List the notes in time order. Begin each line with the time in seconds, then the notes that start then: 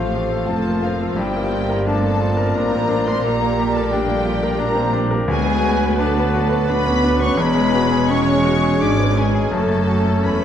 Already playing: A1 A2 F3 A3 C4 F4 A4 C5 F5
0.13 F4 G4
0.32 A4
0.46 F1 F2 A3 C4 F4 A4 A5
0.67 A#3
0.82 F3 C4 F4 F5
1.01 A4
1.15 G1 G2 G3 A#3 E4 G4 D5 G5
1.19 G5
1.36 A#3
1.53 F4
1.69 A#4
1.85 A3 C4 D4 A4 A5
2.02 A#3
2.20 F4
2.37 A#4
2.53 A1 A2 A#3 D4 F4 A#4 A#5
2.71 C4
2.88 D4
3.06 C4 A#4 C5 C6
3.23 A#1 A#2 G3 A#3 G4 A#4 A#5
3.42 A#3
3.59 G4
3.74 A3 A4 A#4 A5
3.91 G3 A3 D4 G4 G5
4.08 A#3
4.25 F4 G4
4.43 A#4
4.59 G3 A#3 D4 G4 A#4 A#5
4.75 C4
4.93 D4
5.11 A#4
5.28 D2 F#3 G#3 B3 G#4 B4 G#5
5.45 B3
5.63 F#4
5.80 B4
5.98 A3 D4 A4 A5
6.15 B3
6.34 F#4
6.49 B4
6.68 B3 D4 B4 B5
6.86 C#4
7.04 D4
7.20 C#4 B4 C#5 C#6
7.37 E1 E2 G#3 B3 C#4 G#4 B4 C#5 B5
7.55 G#3
7.74 F#4
7.92 G#4
8.09 C#4 G#4 C#5 C#6
8.26 G#3
8.45 F#4
8.63 G#4
8.80 G#1 G#2 C#4 D4 G#4 D5 D6
8.99 B3
9.17 G#3 C#4 G#4 G#5
9.35 G#4
9.51 F#1 F#2 A3 C#4 A4 A5
9.70 A3
9.87 F#4
10.06 A4
10.24 E1 E2 B3 C#4 B4 B5